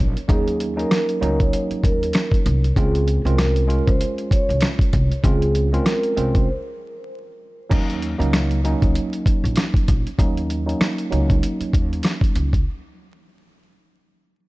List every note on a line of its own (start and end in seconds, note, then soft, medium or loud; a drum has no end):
0.00 0.13 A#1 loud
0.00 0.18 F#3 medium
0.00 0.18 A#3 medium
0.00 0.18 C#4 medium
0.00 0.18 D#4 loud
0.17 closed hi-hat soft
0.28 0.82 D#2 loud
0.28 0.73 F#3 loud
0.28 0.73 A#3 medium
0.28 0.73 C#4 medium
0.28 0.73 D#4 loud
0.28 0.74 G#4 loud
0.28 kick loud
0.28 closed hi-hat medium
0.48 closed hi-hat medium
0.60 closed hi-hat medium
0.76 1.18 F#3 medium
0.76 1.18 A#3 medium
0.76 1.18 C#4 medium
0.76 1.19 D#4 loud
0.76 0.90 A#4 medium
0.76 closed hi-hat medium
0.91 1.37 A#4 medium
0.91 cross-stick loud
0.91 snare loud
0.91 closed hi-hat medium
1.09 closed hi-hat medium
1.21 1.49 C#2 medium
1.21 2.65 F#3 loud
1.21 2.65 A#3 medium
1.21 2.65 C#4 medium
1.21 2.65 D#4 loud
1.21 closed hi-hat medium
1.38 1.80 C#5 medium
1.38 kick medium
1.38 closed hi-hat soft
1.53 closed hi-hat medium
1.70 muted upright bass stroke soft
1.70 closed hi-hat medium
1.84 2.10 D#2 medium
1.84 2.29 A#4 medium
1.84 kick loud
1.84 closed hi-hat medium
2.03 closed hi-hat medium
2.13 cross-stick medium
2.13 snare loud
2.13 closed hi-hat medium
2.32 kick loud
2.32 closed hi-hat soft
2.46 2.72 C2 loud
2.46 closed hi-hat medium
2.64 closed hi-hat soft
2.76 3.18 C#2 loud
2.76 3.21 G#3 medium
2.76 3.21 C4 medium
2.76 3.21 C#4 medium
2.76 3.21 F4 loud
2.76 3.22 G#4 loud
2.76 kick loud
2.76 closed hi-hat medium
2.95 closed hi-hat medium
3.08 closed hi-hat medium
3.24 3.78 C2 loud
3.24 3.66 G#3 medium
3.24 3.66 C4 medium
3.24 3.67 C#4 medium
3.24 3.67 F4 loud
3.24 3.37 A#4 medium
3.24 closed hi-hat medium
3.38 3.83 A#4 medium
3.38 cross-stick loud
3.38 snare loud
3.38 closed hi-hat medium
3.56 closed hi-hat medium
3.67 5.12 G#3 medium
3.67 5.12 C#4 medium
3.67 5.12 F4 loud
3.67 closed hi-hat medium
3.86 3.99 C#2 loud
3.86 4.28 C5 medium
3.86 kick loud
3.86 closed hi-hat soft
4.01 closed hi-hat medium
4.18 closed hi-hat medium
4.31 4.59 C#5 medium
4.31 kick medium
4.31 closed hi-hat medium
4.49 4.60 C2 medium
4.49 closed hi-hat medium
4.61 cross-stick medium
4.61 snare loud
4.61 closed hi-hat medium
4.79 kick loud
4.79 closed hi-hat medium
4.93 5.08 C2 loud
4.93 kick medium
4.93 closed hi-hat medium
5.12 closed hi-hat soft
5.23 5.77 C#2 loud
5.23 5.68 G#3 loud
5.23 5.68 C4 medium
5.23 5.68 C#4 medium
5.23 5.69 F4 loud
5.23 5.69 G#4 loud
5.23 kick loud
5.23 closed hi-hat medium
5.42 closed hi-hat medium
5.55 closed hi-hat medium
5.72 6.14 G#3 medium
5.72 6.14 C4 medium
5.72 6.14 C#4 medium
5.72 6.14 F4 loud
5.72 5.83 A#4 medium
5.72 closed hi-hat medium
5.85 6.30 A#4 medium
5.85 cross-stick loud
5.85 snare loud
5.85 closed hi-hat medium
6.03 closed hi-hat medium
6.16 6.43 C2 medium
6.16 6.48 G#3 medium
6.16 6.48 C4 medium
6.16 6.48 C#4 medium
6.16 6.48 F4 medium
6.16 closed hi-hat medium
6.35 6.47 C5 medium
6.35 kick loud
6.35 closed hi-hat soft
7.70 8.13 D#2 loud
7.70 8.14 F#3 loud
7.70 8.15 A#3 medium
7.70 8.15 C#4 medium
7.70 8.15 D#4 loud
7.70 kick loud
7.70 closed hi-hat medium
7.70 crash medium
7.90 closed hi-hat medium
8.02 closed hi-hat medium
8.18 8.73 C#2 medium
8.18 8.60 F#3 loud
8.18 8.60 A#3 medium
8.18 8.60 C#4 medium
8.18 8.61 D#4 loud
8.18 closed hi-hat medium
8.33 cross-stick loud
8.33 snare loud
8.33 closed hi-hat medium
8.51 closed hi-hat medium
8.64 10.08 F#3 medium
8.64 10.08 A#3 medium
8.64 10.08 C#4 medium
8.64 10.08 D#4 loud
8.64 closed hi-hat medium
8.82 8.94 C#2 medium
8.82 kick loud
8.82 closed hi-hat soft
8.95 closed hi-hat medium
9.13 closed hi-hat medium
9.26 kick medium
9.26 closed hi-hat medium
9.44 9.55 A#1 medium
9.44 closed hi-hat medium
9.56 cross-stick medium
9.56 snare loud
9.56 closed hi-hat medium
9.74 kick loud
9.74 closed hi-hat medium
9.88 10.03 A#1 medium
9.88 kick medium
9.88 closed hi-hat medium
10.07 closed hi-hat soft
10.18 10.72 D#2 loud
10.18 10.62 F#3 loud
10.18 10.63 A#3 medium
10.18 10.63 C#4 medium
10.18 10.63 D#4 loud
10.18 kick loud
10.18 closed hi-hat medium
10.37 closed hi-hat medium
10.50 closed hi-hat medium
10.66 11.08 F#3 medium
10.66 11.08 A#3 medium
10.66 11.08 C#4 medium
10.66 11.08 D#4 medium
10.66 closed hi-hat soft
10.81 cross-stick loud
10.81 snare loud
10.81 closed hi-hat medium
10.98 closed hi-hat medium
11.10 11.38 C#2 medium
11.10 12.55 F#3 loud
11.10 12.55 A#3 medium
11.10 12.55 C#4 medium
11.10 12.55 D#4 loud
11.10 closed hi-hat medium
11.30 kick medium
11.30 closed hi-hat soft
11.43 closed hi-hat medium
11.60 muted upright bass stroke soft
11.60 closed hi-hat medium
11.73 12.00 D#2 medium
11.73 kick medium
11.73 closed hi-hat medium
11.93 closed hi-hat medium
12.03 cross-stick medium
12.03 snare loud
12.03 closed hi-hat medium
12.21 kick medium
12.21 closed hi-hat soft
12.36 12.62 C#2 medium
12.36 closed hi-hat medium
12.53 kick medium
12.53 closed hi-hat soft